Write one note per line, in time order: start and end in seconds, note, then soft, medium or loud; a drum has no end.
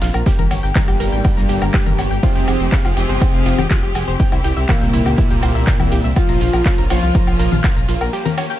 0.00 0.10 A#1 loud
0.00 0.24 A#3 medium
0.00 0.24 F4 medium
0.00 0.08 F4 loud
0.00 snare loud
0.00 open hi-hat loud
0.00 ride medium
0.00 maracas medium
0.14 0.22 A#1 medium
0.14 0.21 A#4 medium
0.14 low woodblock medium
0.14 maracas medium
0.26 2.21 A#3 medium
0.26 0.36 G4 loud
0.26 6.12 G4 medium
0.26 kick loud
0.26 snare loud
0.26 ride medium
0.26 maracas soft
0.39 0.47 G1 medium
0.39 0.45 A#4 medium
0.39 ride soft
0.39 low conga medium
0.51 0.59 G1 loud
0.51 0.61 C#5 medium
0.51 open hi-hat loud
0.51 ride medium
0.51 low woodblock medium
0.51 maracas medium
0.63 0.71 G1 medium
0.63 0.67 G5 medium
0.63 maracas medium
0.75 2.13 G2 loud
0.75 2.13 G3 loud
0.75 0.85 A#5 loud
0.75 kick loud
0.75 snare loud
0.75 clap loud
0.75 ride medium
0.75 low conga medium
0.75 maracas soft
0.88 0.96 G1 medium
0.88 0.98 G4 medium
0.88 snare medium
0.88 low woodblock medium
1.00 1.08 G1 loud
1.00 1.10 A#4 loud
1.00 open hi-hat loud
1.00 ride medium
1.00 maracas medium
1.12 1.21 G#1 medium
1.12 1.19 G5 medium
1.12 maracas medium
1.24 1.35 G5 medium
1.24 kick loud
1.24 ride medium
1.24 low woodblock medium
1.24 maracas soft
1.37 1.45 G1 medium
1.37 1.41 A#5 medium
1.37 snare soft
1.49 1.57 G1 loud
1.49 1.56 G4 loud
1.49 open hi-hat loud
1.49 ride medium
1.49 maracas loud
1.62 1.70 G1 medium
1.62 1.68 A#4 medium
1.62 low woodblock medium
1.62 maracas medium
1.74 1.84 G4 loud
1.74 kick loud
1.74 snare loud
1.74 clap loud
1.74 ride medium
1.74 maracas soft
1.86 1.94 G1 medium
1.86 1.93 A#4 medium
1.86 low conga medium
1.98 2.07 G1 loud
1.98 2.08 C#5 medium
1.98 open hi-hat loud
1.98 ride medium
1.98 low woodblock medium
1.98 maracas medium
2.11 2.19 G1 medium
2.11 2.15 G5 medium
2.11 maracas medium
2.23 2.87 C3 loud
2.23 4.18 F3 medium
2.23 2.87 C4 loud
2.23 6.12 C4 medium
2.23 2.33 F4 loud
2.23 4.18 G#4 medium
2.23 kick loud
2.23 ride medium
2.23 maracas soft
2.35 2.43 F1 medium
2.35 2.42 G4 medium
2.35 snare medium
2.47 2.56 F1 loud
2.47 2.58 G#4 medium
2.47 open hi-hat loud
2.47 ride medium
2.47 low woodblock medium
2.47 maracas loud
2.60 2.68 F1 medium
2.60 2.64 C5 medium
2.60 maracas medium
2.72 2.82 F5 loud
2.72 kick loud
2.72 snare loud
2.72 clap loud
2.72 ride medium
2.72 maracas soft
2.85 2.93 F1 medium
2.85 2.94 F4 medium
2.85 snare soft
2.85 low woodblock medium
2.96 3.05 F1 loud
2.96 3.61 C3 loud
2.96 3.61 C4 loud
2.96 3.07 G4 loud
2.96 open hi-hat loud
2.96 ride medium
2.96 maracas loud
3.09 3.17 G1 medium
3.09 3.16 C5 medium
3.09 maracas medium
3.21 3.31 C5 medium
3.21 kick loud
3.21 ride medium
3.21 low woodblock medium
3.21 maracas soft
3.34 3.42 F1 medium
3.34 3.38 F5 medium
3.46 3.54 F1 loud
3.46 3.53 F4 loud
3.46 snare soft
3.46 open hi-hat loud
3.46 ride medium
3.46 maracas medium
3.58 3.66 F1 loud
3.58 3.65 G4 medium
3.58 low conga medium
3.58 low woodblock medium
3.58 maracas medium
3.70 3.80 F4 loud
3.70 kick loud
3.70 snare loud
3.70 clap loud
3.70 ride medium
3.70 maracas soft
3.83 3.91 F1 medium
3.83 3.89 G4 medium
3.95 4.03 F1 loud
3.95 4.05 G#4 medium
3.95 open hi-hat loud
3.95 ride medium
3.95 low woodblock medium
3.95 maracas medium
4.08 4.16 F1 medium
4.08 4.11 C5 medium
4.08 maracas medium
4.20 6.14 C3 medium
4.20 6.14 E4 medium
4.20 4.30 G5 loud
4.20 kick loud
4.20 ride medium
4.20 maracas soft
4.32 4.40 C2 medium
4.32 4.42 E4 medium
4.32 ride soft
4.32 low woodblock medium
4.44 4.52 C2 loud
4.44 4.54 G4 loud
4.44 open hi-hat loud
4.44 ride medium
4.44 maracas medium
4.57 4.65 C2 medium
4.57 4.63 E5 medium
4.57 maracas medium
4.69 6.07 A#2 loud
4.69 6.07 A#3 loud
4.69 4.79 E5 medium
4.69 kick loud
4.69 snare loud
4.69 clap loud
4.69 ride medium
4.69 low conga medium
4.69 low woodblock medium
4.69 maracas soft
4.81 4.89 C2 medium
4.81 4.85 G5 medium
4.81 snare medium
4.93 5.02 C2 loud
4.93 5.00 E4 loud
4.93 open hi-hat loud
4.93 ride medium
4.93 maracas medium
5.06 5.14 C#2 medium
5.06 5.12 G4 medium
5.06 low woodblock medium
5.06 maracas soft
5.18 5.28 E4 loud
5.18 kick loud
5.18 ride medium
5.18 maracas soft
5.30 5.39 C2 medium
5.30 5.37 G4 medium
5.30 snare soft
5.42 5.51 C2 loud
5.42 5.53 C5 medium
5.42 open hi-hat loud
5.42 ride medium
5.42 low woodblock medium
5.42 maracas medium
5.55 5.63 C2 loud
5.55 5.59 E5 medium
5.55 maracas medium
5.67 5.77 G5 loud
5.67 kick loud
5.67 snare loud
5.67 clap loud
5.67 ride medium
5.67 maracas soft
5.80 5.88 C2 medium
5.80 5.89 E4 medium
5.80 low conga medium
5.80 low woodblock medium
5.92 6.00 C2 loud
5.92 6.02 G4 loud
5.92 open hi-hat loud
5.92 ride medium
5.92 maracas medium
6.04 6.12 C2 medium
6.04 6.11 E5 medium
6.04 maracas soft
6.16 6.81 F3 loud
6.16 8.60 A#3 medium
6.16 8.11 C#4 medium
6.16 6.80 F4 loud
6.16 8.11 F4 loud
6.16 6.26 F5 medium
6.16 kick loud
6.16 ride medium
6.16 low woodblock medium
6.16 maracas soft
6.29 6.37 A#1 medium
6.29 6.33 A#5 medium
6.29 snare medium
6.41 6.49 A#1 loud
6.41 6.48 F4 loud
6.41 open hi-hat loud
6.41 ride medium
6.41 maracas medium
6.53 6.61 A#1 medium
6.53 6.60 A#4 medium
6.53 low woodblock medium
6.53 maracas soft
6.65 6.76 F4 loud
6.65 kick loud
6.65 snare loud
6.65 clap loud
6.65 ride medium
6.65 maracas soft
6.78 6.86 A#1 medium
6.78 6.84 A#4 medium
6.78 snare soft
6.90 6.98 A#1 loud
6.90 7.54 F3 loud
6.90 7.54 F4 loud
6.90 7.00 C#5 medium
6.90 snare loud
6.90 open hi-hat loud
6.90 ride medium
6.90 low woodblock medium
6.90 maracas medium
7.03 7.11 C2 medium
7.03 7.07 F5 medium
7.03 maracas soft
7.14 7.25 A#5 loud
7.14 kick loud
7.14 ride medium
7.14 maracas soft
7.27 7.35 A#1 medium
7.27 7.37 F4 medium
7.27 low woodblock medium
7.39 7.48 A#1 loud
7.39 7.49 A#4 loud
7.39 snare soft
7.39 open hi-hat loud
7.39 ride medium
7.39 maracas medium
7.52 7.60 A#1 loud
7.52 7.58 F5 medium
7.52 low conga medium
7.52 maracas medium
7.63 7.74 F5 medium
7.63 kick loud
7.63 snare loud
7.63 clap loud
7.63 ride medium
7.63 low woodblock medium
7.63 maracas soft
7.76 7.84 A#1 medium
7.76 7.80 A#5 medium
7.88 7.97 A#1 loud
7.88 7.95 F4 loud
7.88 open hi-hat loud
7.88 ride medium
7.88 maracas medium
8.01 8.09 A#1 loud
8.01 8.07 A#4 medium
8.01 low woodblock medium
8.01 maracas medium
8.13 8.60 C#4 medium
8.13 8.23 G4 loud
8.13 8.60 G4 medium
8.13 ride medium
8.13 maracas soft
8.25 8.32 A#4 medium
8.25 ride soft
8.25 low conga medium
8.38 8.48 C#5 medium
8.38 open hi-hat loud
8.38 ride medium
8.38 low woodblock medium
8.38 maracas medium
8.50 8.54 G5 medium
8.50 maracas soft